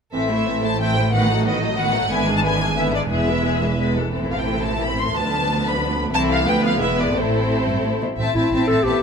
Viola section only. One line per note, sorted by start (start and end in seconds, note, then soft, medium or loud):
0.13 0.29 E3 soft
0.13 0.29 C4 soft
0.30 0.47 A3 soft
0.47 0.64 E3 soft
0.47 0.64 C4 soft
0.63 0.80 A3 soft
0.81 0.96 E3 soft
0.81 0.96 C4 soft
0.97 1.13 A3 soft
1.12 1.28 D#3 soft
1.12 1.28 B3 soft
1.29 1.46 F#3 soft
1.29 1.45 A3 soft
1.45 1.62 D#3 soft
1.45 1.62 B3 soft
1.61 1.77 F#3 soft
1.61 1.78 A3 soft
1.77 1.93 D#3 soft
1.77 1.93 B3 soft
1.93 2.10 F#3 soft
1.93 2.10 A3 soft
2.10 2.26 D3 soft
2.10 2.26 B3 soft
2.26 2.43 E3 soft
2.26 2.43 G#3 soft
2.43 2.60 D3 soft
2.43 2.60 B3 soft
2.59 2.77 E3 soft
2.59 2.77 G#3 soft
2.76 2.92 D3 soft
2.76 2.92 B3 soft
2.92 3.10 E3 soft
2.92 3.08 G#3 soft
3.10 3.26 G#3 soft
3.10 3.26 B3 soft
3.27 3.45 E3 soft
3.27 3.43 G#3 soft
3.44 3.60 G#3 soft
3.44 3.62 B3 soft
3.61 3.79 E3 soft
3.61 3.78 G#3 soft
3.79 3.95 G#3 soft
3.79 3.95 B3 soft
3.96 4.12 E3 soft
3.96 4.14 G#3 soft
4.13 5.10 E3 soft
4.13 5.10 C4 soft
5.14 6.09 F3 soft
5.14 6.09 B3 soft
6.13 6.44 E3 soft
6.13 6.43 C4 soft
6.45 6.60 F3 soft
6.45 6.77 B3 soft
6.62 6.79 F3 soft
6.78 7.14 G#3 soft
6.78 7.13 B3 soft
7.13 8.01 A3 soft
7.13 8.01 C4 soft
8.19 8.34 C4 soft
8.36 8.52 C4 soft
8.54 8.69 C4 soft
8.70 8.84 C4 soft
8.85 9.00 C4 soft